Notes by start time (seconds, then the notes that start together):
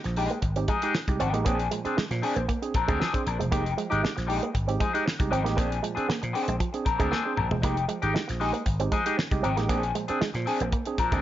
0.04 A#1 F3, muted clean electric guitar stroke, snare, closed hi-hat
0.16 G#3 D#4 G4 G#4, open hi-hat
0.30 A#3, muted clean electric guitar stroke, closed hi-hat
0.42 G#1, muted clean electric guitar stroke, kick, closed hi-hat
0.56 G#3 C4 D#4 G4, muted clean electric guitar stroke, closed hi-hat
0.68 F3 G#3 D#4 G#4, kick, closed hi-hat
0.82 G#3 D#4 G4 G#4, closed hi-hat
0.95 muted clean electric guitar stroke, snare
1.08 C2 G#3 D#4 G4, muted clean electric guitar stroke, kick, closed hi-hat
1.20 G#1 F3 G#3 C4 D#4 G4, closed hi-hat
1.33 A1 G#3 A#3 D#4 G4, muted clean electric guitar stroke, closed hi-hat
1.45 A#1 A#3 C4 D4 G#4, kick, closed hi-hat
1.59 closed hi-hat
1.71 A#2 F3 G#3, muted clean electric guitar stroke, closed hi-hat
1.85 C4 D4 G#4, muted clean electric guitar stroke, muted slap bass stroke, closed hi-hat
1.97 G#3 D4 G#4, muted clean electric guitar stroke, muted slap bass stroke, snare
2.11 A#2 F3, muted clean electric guitar stroke, snare, closed hi-hat
2.22 C4 D4 G#4, open hi-hat
2.36 A#1 A#3, muted clean electric guitar stroke, closed hi-hat
2.48 A#3, muted clean electric guitar stroke, kick, closed hi-hat
2.62 C4 D4 G#4, muted clean electric guitar stroke, closed hi-hat
2.74 A#2 F3 C4 D4 A#4, muted slap bass stroke, kick, closed hi-hat
2.88 D2 G#3 C4 D4 G#4 A#4, kick, closed hi-hat
3.00 F3 C4 D4 G#4, snare
3.13 C4 D4 G#4, muted clean electric guitar stroke, kick, closed hi-hat
3.26 A#1 C4 D4 A#4, closed hi-hat
3.39 E1 A#2 F3 G#3, muted clean electric guitar stroke, closed hi-hat
3.51 F1 G#3 A#3 D#4 G4, kick, closed hi-hat
3.66 closed hi-hat
3.77 F3 G#3, muted clean electric guitar stroke, closed hi-hat
3.90 G#1 G#3 D#4 G4, muted clean electric guitar stroke, closed hi-hat
4.03 G#3 D#4 G4, muted clean electric guitar stroke, muted slap bass stroke, snare
4.16 A#1 F3, muted clean electric guitar stroke, snare, closed hi-hat
4.27 G#3 D#4 G4 G#4, open hi-hat
4.41 A#3, muted clean electric guitar stroke, closed hi-hat
4.53 G#1, muted clean electric guitar stroke, kick, closed hi-hat
4.67 G#3 C4 D#4 G4, muted clean electric guitar stroke, closed hi-hat
4.80 F3 G#3 D#4 G#4, kick, closed hi-hat
4.93 G#3 D#4 G4 G#4, closed hi-hat
5.06 muted clean electric guitar stroke, snare
5.19 C2 G#3 D#4 G4, muted clean electric guitar stroke, kick, closed hi-hat
5.31 G#1 F3 G#3 C4 D#4 G4, closed hi-hat
5.44 A1 G#3 A#3 D#4 G4, muted clean electric guitar stroke, snare, closed hi-hat
5.56 A#1 A#3 C4 D4 G#4, kick, closed hi-hat
5.72 closed hi-hat
5.82 A#2 F3 G#3, muted clean electric guitar stroke, closed hi-hat
5.95 C4 D4 G#4, muted clean electric guitar stroke, muted slap bass stroke, closed hi-hat
6.08 A#3 D4 G#4, muted clean electric guitar stroke, muted slap bass stroke, snare
6.22 A#2 F3, muted clean electric guitar stroke, closed hi-hat
6.33 C4 D4 G#4, open hi-hat
6.46 A#1 G#3, muted clean electric guitar stroke, closed hi-hat
6.60 F3, muted clean electric guitar stroke, kick, closed hi-hat
6.73 C4 D4 G#4, muted clean electric guitar stroke, closed hi-hat
6.85 A#2 F3 C4 D4 A#4, muted slap bass stroke, kick, closed hi-hat
6.99 D2 G#3 C4 D4 G#4 A#4, kick, closed hi-hat
7.11 A#3 C4 D4 G#4, snare
7.25 C4 D4 G#4, muted clean electric guitar stroke
7.36 A#1 C4 D4 A#4, mid tom
7.49 E1 A#2 F3 G#3, muted clean electric guitar stroke, floor tom
7.62 F1 G#3 A#3 D#4 G4, kick, closed hi-hat
7.77 closed hi-hat
7.88 F3 G#3, muted clean electric guitar stroke, closed hi-hat
8.02 G#1 G#3 D#4 G4, muted clean electric guitar stroke, closed hi-hat
8.14 G#3 D#4 G4, muted clean electric guitar stroke, muted slap bass stroke, snare
8.29 A#1 F3, muted clean electric guitar stroke, snare, closed hi-hat
8.40 G#3 D#4 G4 G#4, open hi-hat
8.53 A#3, muted clean electric guitar stroke, closed hi-hat
8.66 G#1, muted clean electric guitar stroke, kick, closed hi-hat
8.80 G#3 C4 D#4 G4, muted clean electric guitar stroke, closed hi-hat
8.92 F3 G#3 D#4 G#4, kick, closed hi-hat
9.06 G#3 D#4 G4 G#4, closed hi-hat
9.18 muted clean electric guitar stroke, snare
9.31 C2 G#3 D#4 G4, muted clean electric guitar stroke, kick, closed hi-hat
9.43 G#1 F3 G#3 C4 D#4 G4, closed hi-hat
9.57 A1 G#3 A#3 D#4 G4, muted clean electric guitar stroke, snare, closed hi-hat
9.68 A#1 A#3 C4 D4 G#4, kick, closed hi-hat
9.83 closed hi-hat
9.95 A#2 F3 G#3, muted clean electric guitar stroke, closed hi-hat
10.08 C4 D4 G#4, muted clean electric guitar stroke, muted slap bass stroke, closed hi-hat
10.21 G#3 D4 G#4, muted slap bass stroke, snare
10.34 A#2 F3, muted clean electric guitar stroke, snare, closed hi-hat
10.46 C4 D4 G#4, open hi-hat
10.60 A#1 A#3, muted clean electric guitar stroke, closed hi-hat
10.72 A#3, muted clean electric guitar stroke, kick, closed hi-hat
10.85 C4 D4 G#4, muted clean electric guitar stroke, closed hi-hat
10.98 A#2 F3 C4 D4 A#4, muted slap bass stroke, kick, closed hi-hat
11.12 D2 G#3 C4 D4 G#4 A#4, kick, closed hi-hat